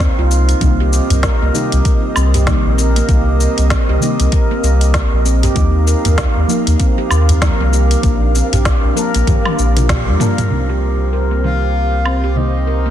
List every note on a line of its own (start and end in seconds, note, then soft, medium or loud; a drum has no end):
0.00 0.58 F3 medium
0.00 0.59 A#3 medium
0.00 0.17 C4 loud
0.00 0.57 D#4 medium
0.00 0.60 D#4 medium
0.00 0.59 C5 medium
0.00 0.57 F5 loud
0.00 kick loud
0.00 snare loud
0.00 closed hi-hat soft
0.00 shaker soft
0.18 0.54 C2 loud
0.18 0.30 F4 medium
0.31 0.47 C4 medium
0.31 shaker medium
0.49 closed hi-hat soft
0.49 shaker soft
0.60 1.00 C2 loud
0.60 1.50 C3 loud
0.60 1.51 D#3 medium
0.60 1.51 G3 medium
0.60 1.52 A#3 medium
0.60 5.52 C4 medium
0.60 0.79 C4 medium
0.60 10.47 A#4 medium
0.60 5.52 D#5 loud
0.60 kick loud
0.60 closed hi-hat soft
0.60 shaker soft
0.64 1.52 D#4 loud
0.80 0.92 G4 loud
0.93 shaker medium
1.10 1.28 C2 medium
1.10 closed hi-hat medium
1.10 udu medium
1.10 shaker soft
1.23 1.41 A#4 medium
1.23 kick loud
1.23 snare medium
1.23 closed hi-hat soft
1.23 shaker soft
1.42 1.50 C2 medium
1.42 1.54 A#3 medium
1.53 1.75 C3 medium
1.53 1.75 D#3 medium
1.53 1.76 G3 medium
1.53 1.76 A#3 medium
1.53 1.76 D#4 loud
1.53 2.15 G4 medium
1.53 shaker medium
1.72 1.80 C2 loud
1.72 closed hi-hat medium
1.72 shaker soft
1.85 kick loud
1.85 closed hi-hat soft
1.85 shaker soft
2.16 2.54 C2 loud
2.16 2.34 C4 medium
2.16 low woodblock medium
2.16 shaker medium
2.34 2.46 G4 medium
2.34 closed hi-hat soft
2.34 udu medium
2.34 shaker soft
2.46 2.61 C3 medium
2.46 2.61 D#3 medium
2.46 2.61 G3 medium
2.46 2.61 A#3 medium
2.46 2.62 D#4 loud
2.46 kick loud
2.46 snare medium
2.46 closed hi-hat soft
2.46 shaker soft
2.66 3.01 A#1 medium
2.78 2.95 A#4 medium
2.78 shaker medium
2.96 3.08 A#3 loud
2.96 closed hi-hat medium
2.96 shaker soft
3.07 3.47 C2 loud
3.07 3.98 C3 medium
3.07 3.98 D#3 medium
3.07 3.98 G3 medium
3.07 3.99 A#3 medium
3.07 3.70 G4 medium
3.07 kick loud
3.07 closed hi-hat soft
3.07 shaker soft
3.11 4.00 D#4 medium
3.40 shaker medium
3.58 3.75 C2 medium
3.58 closed hi-hat medium
3.58 shaker soft
3.70 3.88 C4 medium
3.70 kick loud
3.70 snare medium
3.70 closed hi-hat soft
3.70 shaker soft
3.89 3.97 C2 medium
3.89 4.01 G4 loud
3.99 5.52 C3 medium
3.99 5.52 D#3 medium
3.99 5.53 G3 medium
3.99 5.53 A#3 medium
3.99 5.54 D#4 medium
3.99 shaker medium
4.20 4.28 C2 medium
4.20 closed hi-hat medium
4.20 shaker soft
4.32 4.50 A#4 medium
4.32 kick loud
4.32 closed hi-hat soft
4.32 shaker soft
4.51 4.63 A#3 loud
4.63 5.01 C2 loud
4.63 5.24 G4 medium
4.63 shaker medium
4.81 closed hi-hat medium
4.81 shaker soft
4.94 kick loud
4.94 snare medium
4.94 closed hi-hat soft
4.94 shaker soft
5.13 5.49 A#1 medium
5.25 5.43 C4 medium
5.25 shaker medium
5.43 5.55 G4 loud
5.43 closed hi-hat medium
5.43 udu medium
5.43 shaker soft
5.54 5.94 D#2 loud
5.54 6.45 F3 loud
5.54 6.46 A#3 medium
5.54 8.01 D#4 medium
5.54 6.47 D#4 loud
5.54 10.47 F5 loud
5.54 kick loud
5.54 closed hi-hat soft
5.54 shaker soft
5.87 6.04 A#4 medium
5.87 shaker medium
6.05 6.22 D#2 medium
6.05 6.17 A#3 loud
6.05 closed hi-hat medium
6.05 udu medium
6.05 shaker soft
6.18 kick loud
6.18 snare medium
6.18 closed hi-hat soft
6.18 shaker soft
6.36 6.44 D#2 medium
6.48 6.70 F3 medium
6.48 6.70 A#3 medium
6.48 6.71 D#4 medium
6.48 shaker medium
6.67 6.75 D#2 medium
6.67 closed hi-hat medium
6.67 shaker soft
6.80 6.97 C4 medium
6.80 kick loud
6.80 closed hi-hat soft
6.80 shaker soft
6.98 7.10 G4 loud
7.11 7.49 D#2 loud
7.11 low woodblock medium
7.11 shaker medium
7.29 closed hi-hat medium
7.29 udu medium
7.29 shaker soft
7.41 7.56 F3 medium
7.41 7.56 A#3 medium
7.41 7.57 D#4 loud
7.41 7.59 A#4 medium
7.41 kick loud
7.41 snare loud
7.41 closed hi-hat soft
7.41 shaker soft
7.60 7.96 C2 medium
7.60 7.72 A#3 loud
7.73 8.04 G4 medium
7.73 shaker medium
7.91 closed hi-hat medium
7.91 shaker soft
8.02 8.42 A#1 loud
8.02 8.93 F3 medium
8.02 8.94 A#3 medium
8.02 10.48 D4 medium
8.02 kick loud
8.02 closed hi-hat soft
8.02 shaker soft
8.06 8.95 D4 medium
8.35 8.52 C4 medium
8.35 shaker medium
8.53 8.70 A#1 medium
8.53 8.65 G4 loud
8.53 closed hi-hat medium
8.53 udu medium
8.53 shaker soft
8.65 kick loud
8.65 snare loud
8.65 closed hi-hat soft
8.65 shaker soft
8.84 8.92 A#1 medium
8.95 10.17 F3 medium
8.95 10.18 A#3 medium
8.95 10.19 D4 medium
8.95 9.14 A#4 medium
8.95 shaker medium
9.14 9.23 A#1 medium
9.14 9.27 A#3 loud
9.14 closed hi-hat medium
9.14 shaker soft
9.27 9.44 G4 medium
9.27 kick loud
9.27 closed hi-hat soft
9.27 high tom medium
9.27 udu medium
9.27 shaker soft
9.45 high tom medium
9.45 low woodblock medium
9.59 10.10 A#1 medium
9.59 shaker medium
9.77 9.89 F4 medium
9.77 closed hi-hat medium
9.77 mid tom medium
9.77 shaker soft
9.89 10.06 G4 medium
9.89 kick loud
9.89 snare loud
9.89 closed hi-hat soft
9.89 mid tom medium
9.89 shaker soft
10.08 10.16 F2 medium
10.08 10.19 G3 medium
10.19 10.48 F3 medium
10.19 10.48 A#3 medium
10.19 10.48 D4 medium
10.19 10.37 A#4 medium
10.19 mid tom loud
10.19 shaker medium
10.38 closed hi-hat medium
10.38 mid tom medium
10.38 udu medium
10.38 shaker soft
10.49 12.90 C2 medium
10.49 11.40 C3 medium
10.49 11.40 D#3 medium
10.49 11.41 G3 medium
10.49 11.41 A#3 medium
10.49 10.69 C4 medium
10.49 12.90 C4 medium
10.49 11.42 D#4 loud
10.49 12.90 G4 medium
10.49 12.90 C5 medium
10.70 10.81 G4 medium
11.13 11.30 A#4 medium
11.31 11.43 A#3 medium
11.43 11.65 C3 medium
11.43 11.65 D#3 medium
11.43 11.65 G3 medium
11.43 11.66 A#3 medium
11.43 11.66 D#4 medium
11.43 12.05 G4 medium
11.43 12.38 F5 loud
12.05 12.23 C4 medium
12.05 low woodblock medium
12.24 12.36 G4 medium
12.35 12.50 C3 medium
12.35 12.51 D#3 medium
12.35 12.51 G3 medium
12.35 12.51 A#3 medium
12.35 12.51 D#4 loud
12.35 12.90 D#5 loud
12.67 12.85 A#4 medium
12.86 12.90 A#3 medium